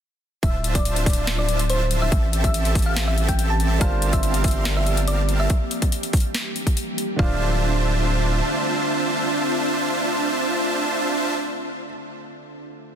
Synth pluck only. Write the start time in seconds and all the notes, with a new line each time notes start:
0.43 E5
0.75 D5
1.06 D5
1.39 D5
1.70 C5
2.02 E5
2.44 E5
2.86 F5
3.08 E5
3.29 G5
3.50 A5
3.81 F5
4.13 E5
4.44 E5
4.77 E5
5.08 D5
5.40 E5
7.19 F5